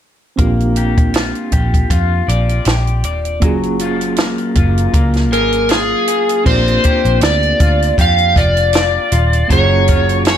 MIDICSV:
0, 0, Header, 1, 6, 480
1, 0, Start_track
1, 0, Key_signature, -2, "major"
1, 0, Tempo, 759494
1, 243, Time_signature, 4, 2, 24, 8
1, 6558, End_track
2, 0, Start_track
2, 0, Title_t, "Electric slide guitar"
2, 0, Program_c, 0, 29
2, 3368, Note_on_c, 0, 70, 73
2, 3590, Note_off_c, 0, 70, 0
2, 3609, Note_on_c, 0, 68, 71
2, 4062, Note_off_c, 0, 68, 0
2, 4085, Note_on_c, 0, 72, 80
2, 4571, Note_off_c, 0, 72, 0
2, 4573, Note_on_c, 0, 74, 75
2, 5024, Note_off_c, 0, 74, 0
2, 5062, Note_on_c, 0, 77, 81
2, 5294, Note_on_c, 0, 74, 74
2, 5301, Note_off_c, 0, 77, 0
2, 6017, Note_off_c, 0, 74, 0
2, 6019, Note_on_c, 0, 73, 73
2, 6466, Note_off_c, 0, 73, 0
2, 6499, Note_on_c, 0, 73, 95
2, 6558, Note_off_c, 0, 73, 0
2, 6558, End_track
3, 0, Start_track
3, 0, Title_t, "Clean electric guitar"
3, 0, Program_c, 1, 27
3, 245, Note_on_c, 1, 58, 61
3, 488, Note_on_c, 1, 67, 53
3, 726, Note_on_c, 1, 65, 51
3, 958, Note_off_c, 1, 67, 0
3, 966, Note_on_c, 1, 67, 51
3, 1201, Note_off_c, 1, 65, 0
3, 1203, Note_on_c, 1, 65, 66
3, 1445, Note_on_c, 1, 74, 65
3, 1679, Note_off_c, 1, 67, 0
3, 1687, Note_on_c, 1, 67, 44
3, 1918, Note_off_c, 1, 74, 0
3, 1926, Note_on_c, 1, 74, 54
3, 2164, Note_on_c, 1, 54, 75
3, 2219, Note_off_c, 1, 67, 0
3, 2219, Note_off_c, 1, 74, 0
3, 2405, Note_off_c, 1, 65, 0
3, 2407, Note_on_c, 1, 65, 55
3, 2457, Note_off_c, 1, 58, 0
3, 2645, Note_on_c, 1, 58, 53
3, 2884, Note_off_c, 1, 65, 0
3, 2887, Note_on_c, 1, 65, 56
3, 3121, Note_off_c, 1, 58, 0
3, 3123, Note_on_c, 1, 58, 67
3, 3363, Note_on_c, 1, 68, 61
3, 3599, Note_off_c, 1, 65, 0
3, 3601, Note_on_c, 1, 65, 49
3, 3834, Note_off_c, 1, 68, 0
3, 3842, Note_on_c, 1, 68, 58
3, 4080, Note_off_c, 1, 58, 0
3, 4083, Note_on_c, 1, 58, 69
3, 4085, Note_off_c, 1, 54, 0
3, 4086, Note_on_c, 1, 74, 57
3, 4137, Note_off_c, 1, 68, 0
3, 4327, Note_on_c, 1, 67, 52
3, 4346, Note_off_c, 1, 65, 0
3, 4558, Note_off_c, 1, 74, 0
3, 4566, Note_on_c, 1, 74, 59
3, 4809, Note_on_c, 1, 65, 55
3, 5042, Note_off_c, 1, 67, 0
3, 5049, Note_on_c, 1, 67, 65
3, 5280, Note_off_c, 1, 65, 0
3, 5283, Note_on_c, 1, 65, 61
3, 5516, Note_off_c, 1, 74, 0
3, 5523, Note_on_c, 1, 74, 54
3, 5762, Note_off_c, 1, 65, 0
3, 5764, Note_on_c, 1, 65, 49
3, 6005, Note_on_c, 1, 54, 75
3, 6006, Note_off_c, 1, 67, 0
3, 6009, Note_on_c, 1, 68, 61
3, 6028, Note_off_c, 1, 58, 0
3, 6057, Note_off_c, 1, 74, 0
3, 6244, Note_off_c, 1, 65, 0
3, 6246, Note_on_c, 1, 65, 56
3, 6480, Note_off_c, 1, 68, 0
3, 6488, Note_on_c, 1, 68, 62
3, 6558, Note_off_c, 1, 54, 0
3, 6558, Note_off_c, 1, 65, 0
3, 6558, Note_off_c, 1, 68, 0
3, 6558, End_track
4, 0, Start_track
4, 0, Title_t, "Reed electric piano"
4, 0, Program_c, 2, 4
4, 229, Note_on_c, 2, 60, 66
4, 241, Note_on_c, 2, 62, 59
4, 252, Note_on_c, 2, 65, 59
4, 262, Note_on_c, 2, 67, 65
4, 344, Control_c, 2, 64, 127
4, 2133, Note_off_c, 2, 60, 0
4, 2139, Note_off_c, 2, 62, 0
4, 2144, Note_off_c, 2, 65, 0
4, 2149, Note_off_c, 2, 67, 0
4, 2149, Note_on_c, 2, 58, 72
4, 2159, Note_on_c, 2, 61, 61
4, 2171, Note_on_c, 2, 65, 63
4, 2174, Control_c, 2, 64, 0
4, 2180, Note_on_c, 2, 68, 72
4, 2284, Control_c, 2, 64, 127
4, 4052, Note_off_c, 2, 58, 0
4, 4057, Note_off_c, 2, 61, 0
4, 4064, Note_off_c, 2, 65, 0
4, 4068, Note_off_c, 2, 68, 0
4, 4071, Note_on_c, 2, 60, 57
4, 4078, Note_on_c, 2, 62, 57
4, 4086, Note_on_c, 2, 65, 55
4, 4095, Control_c, 2, 64, 0
4, 4101, Note_on_c, 2, 67, 59
4, 4213, Control_c, 2, 64, 127
4, 5972, Note_off_c, 2, 60, 0
4, 5976, Note_off_c, 2, 62, 0
4, 5980, Note_off_c, 2, 65, 0
4, 5987, Note_off_c, 2, 67, 0
4, 5992, Note_on_c, 2, 58, 54
4, 6001, Note_on_c, 2, 61, 59
4, 6011, Note_on_c, 2, 65, 51
4, 6012, Control_c, 2, 64, 0
4, 6022, Note_on_c, 2, 68, 59
4, 6122, Control_c, 2, 64, 127
4, 6558, Note_off_c, 2, 58, 0
4, 6558, Note_off_c, 2, 61, 0
4, 6558, Note_off_c, 2, 65, 0
4, 6558, Note_off_c, 2, 68, 0
4, 6558, End_track
5, 0, Start_track
5, 0, Title_t, "Picked electric bass"
5, 0, Program_c, 3, 34
5, 243, Note_on_c, 3, 34, 92
5, 831, Note_off_c, 3, 34, 0
5, 962, Note_on_c, 3, 34, 90
5, 1155, Note_off_c, 3, 34, 0
5, 1201, Note_on_c, 3, 41, 92
5, 1395, Note_off_c, 3, 41, 0
5, 1442, Note_on_c, 3, 34, 71
5, 1635, Note_off_c, 3, 34, 0
5, 1683, Note_on_c, 3, 34, 90
5, 1920, Note_off_c, 3, 34, 0
5, 1920, Note_on_c, 3, 27, 76
5, 2160, Note_off_c, 3, 27, 0
5, 2160, Note_on_c, 3, 30, 106
5, 2750, Note_off_c, 3, 30, 0
5, 2879, Note_on_c, 3, 30, 85
5, 3074, Note_off_c, 3, 30, 0
5, 3118, Note_on_c, 3, 37, 84
5, 3358, Note_off_c, 3, 37, 0
5, 3358, Note_on_c, 3, 32, 82
5, 3745, Note_off_c, 3, 32, 0
5, 4083, Note_on_c, 3, 34, 87
5, 4276, Note_off_c, 3, 34, 0
5, 4455, Note_on_c, 3, 34, 74
5, 4542, Note_off_c, 3, 34, 0
5, 4560, Note_on_c, 3, 38, 74
5, 4754, Note_off_c, 3, 38, 0
5, 4806, Note_on_c, 3, 38, 88
5, 4997, Note_off_c, 3, 38, 0
5, 5042, Note_on_c, 3, 41, 78
5, 5284, Note_on_c, 3, 29, 78
5, 5293, Note_off_c, 3, 41, 0
5, 5668, Note_off_c, 3, 29, 0
5, 5766, Note_on_c, 3, 27, 86
5, 5957, Note_off_c, 3, 27, 0
5, 6005, Note_on_c, 3, 30, 104
5, 6558, Note_off_c, 3, 30, 0
5, 6558, End_track
6, 0, Start_track
6, 0, Title_t, "Drums"
6, 244, Note_on_c, 9, 42, 63
6, 245, Note_on_c, 9, 36, 90
6, 307, Note_off_c, 9, 42, 0
6, 308, Note_off_c, 9, 36, 0
6, 382, Note_on_c, 9, 42, 31
6, 445, Note_off_c, 9, 42, 0
6, 480, Note_on_c, 9, 42, 57
6, 543, Note_off_c, 9, 42, 0
6, 617, Note_on_c, 9, 36, 77
6, 617, Note_on_c, 9, 42, 43
6, 680, Note_off_c, 9, 42, 0
6, 681, Note_off_c, 9, 36, 0
6, 719, Note_on_c, 9, 42, 70
6, 732, Note_on_c, 9, 38, 99
6, 782, Note_off_c, 9, 42, 0
6, 796, Note_off_c, 9, 38, 0
6, 854, Note_on_c, 9, 42, 31
6, 917, Note_off_c, 9, 42, 0
6, 959, Note_on_c, 9, 42, 64
6, 964, Note_on_c, 9, 36, 81
6, 1023, Note_off_c, 9, 42, 0
6, 1027, Note_off_c, 9, 36, 0
6, 1099, Note_on_c, 9, 36, 77
6, 1100, Note_on_c, 9, 42, 45
6, 1162, Note_off_c, 9, 36, 0
6, 1163, Note_off_c, 9, 42, 0
6, 1202, Note_on_c, 9, 36, 88
6, 1203, Note_on_c, 9, 42, 85
6, 1265, Note_off_c, 9, 36, 0
6, 1267, Note_off_c, 9, 42, 0
6, 1449, Note_on_c, 9, 42, 72
6, 1512, Note_off_c, 9, 42, 0
6, 1575, Note_on_c, 9, 42, 38
6, 1638, Note_off_c, 9, 42, 0
6, 1675, Note_on_c, 9, 42, 69
6, 1692, Note_on_c, 9, 38, 87
6, 1738, Note_off_c, 9, 42, 0
6, 1755, Note_off_c, 9, 38, 0
6, 1814, Note_on_c, 9, 42, 30
6, 1877, Note_off_c, 9, 42, 0
6, 1918, Note_on_c, 9, 42, 69
6, 1981, Note_off_c, 9, 42, 0
6, 2053, Note_on_c, 9, 42, 39
6, 2116, Note_off_c, 9, 42, 0
6, 2159, Note_on_c, 9, 42, 71
6, 2161, Note_on_c, 9, 36, 92
6, 2222, Note_off_c, 9, 42, 0
6, 2224, Note_off_c, 9, 36, 0
6, 2296, Note_on_c, 9, 42, 30
6, 2359, Note_off_c, 9, 42, 0
6, 2397, Note_on_c, 9, 42, 55
6, 2460, Note_off_c, 9, 42, 0
6, 2533, Note_on_c, 9, 42, 41
6, 2597, Note_off_c, 9, 42, 0
6, 2632, Note_on_c, 9, 42, 69
6, 2645, Note_on_c, 9, 38, 98
6, 2695, Note_off_c, 9, 42, 0
6, 2708, Note_off_c, 9, 38, 0
6, 2768, Note_on_c, 9, 42, 34
6, 2831, Note_off_c, 9, 42, 0
6, 2878, Note_on_c, 9, 42, 73
6, 2881, Note_on_c, 9, 36, 91
6, 2941, Note_off_c, 9, 42, 0
6, 2945, Note_off_c, 9, 36, 0
6, 3017, Note_on_c, 9, 42, 48
6, 3081, Note_off_c, 9, 42, 0
6, 3120, Note_on_c, 9, 36, 88
6, 3121, Note_on_c, 9, 42, 77
6, 3183, Note_off_c, 9, 36, 0
6, 3184, Note_off_c, 9, 42, 0
6, 3245, Note_on_c, 9, 42, 30
6, 3261, Note_on_c, 9, 38, 35
6, 3308, Note_off_c, 9, 42, 0
6, 3324, Note_off_c, 9, 38, 0
6, 3366, Note_on_c, 9, 42, 72
6, 3429, Note_off_c, 9, 42, 0
6, 3492, Note_on_c, 9, 42, 42
6, 3555, Note_off_c, 9, 42, 0
6, 3595, Note_on_c, 9, 42, 64
6, 3612, Note_on_c, 9, 38, 83
6, 3658, Note_off_c, 9, 42, 0
6, 3675, Note_off_c, 9, 38, 0
6, 3839, Note_on_c, 9, 42, 68
6, 3903, Note_off_c, 9, 42, 0
6, 3976, Note_on_c, 9, 42, 46
6, 4040, Note_off_c, 9, 42, 0
6, 4083, Note_on_c, 9, 36, 90
6, 4084, Note_on_c, 9, 49, 77
6, 4146, Note_off_c, 9, 36, 0
6, 4147, Note_off_c, 9, 49, 0
6, 4220, Note_on_c, 9, 42, 31
6, 4284, Note_off_c, 9, 42, 0
6, 4321, Note_on_c, 9, 42, 58
6, 4329, Note_on_c, 9, 36, 76
6, 4384, Note_off_c, 9, 42, 0
6, 4392, Note_off_c, 9, 36, 0
6, 4456, Note_on_c, 9, 42, 45
6, 4519, Note_off_c, 9, 42, 0
6, 4558, Note_on_c, 9, 42, 75
6, 4571, Note_on_c, 9, 38, 97
6, 4621, Note_off_c, 9, 42, 0
6, 4634, Note_off_c, 9, 38, 0
6, 4694, Note_on_c, 9, 42, 33
6, 4757, Note_off_c, 9, 42, 0
6, 4803, Note_on_c, 9, 42, 68
6, 4805, Note_on_c, 9, 36, 86
6, 4866, Note_off_c, 9, 42, 0
6, 4868, Note_off_c, 9, 36, 0
6, 4944, Note_on_c, 9, 42, 50
6, 5008, Note_off_c, 9, 42, 0
6, 5043, Note_on_c, 9, 36, 85
6, 5047, Note_on_c, 9, 42, 82
6, 5106, Note_off_c, 9, 36, 0
6, 5110, Note_off_c, 9, 42, 0
6, 5172, Note_on_c, 9, 42, 31
6, 5235, Note_off_c, 9, 42, 0
6, 5285, Note_on_c, 9, 36, 87
6, 5290, Note_on_c, 9, 42, 72
6, 5348, Note_off_c, 9, 36, 0
6, 5353, Note_off_c, 9, 42, 0
6, 5414, Note_on_c, 9, 42, 48
6, 5477, Note_off_c, 9, 42, 0
6, 5516, Note_on_c, 9, 42, 80
6, 5533, Note_on_c, 9, 38, 90
6, 5579, Note_off_c, 9, 42, 0
6, 5596, Note_off_c, 9, 38, 0
6, 5762, Note_on_c, 9, 42, 67
6, 5825, Note_off_c, 9, 42, 0
6, 5897, Note_on_c, 9, 42, 41
6, 5960, Note_off_c, 9, 42, 0
6, 6006, Note_on_c, 9, 36, 84
6, 6006, Note_on_c, 9, 42, 80
6, 6069, Note_off_c, 9, 36, 0
6, 6069, Note_off_c, 9, 42, 0
6, 6242, Note_on_c, 9, 42, 58
6, 6250, Note_on_c, 9, 36, 73
6, 6305, Note_off_c, 9, 42, 0
6, 6313, Note_off_c, 9, 36, 0
6, 6378, Note_on_c, 9, 42, 44
6, 6441, Note_off_c, 9, 42, 0
6, 6477, Note_on_c, 9, 42, 72
6, 6491, Note_on_c, 9, 38, 100
6, 6541, Note_off_c, 9, 42, 0
6, 6554, Note_off_c, 9, 38, 0
6, 6558, End_track
0, 0, End_of_file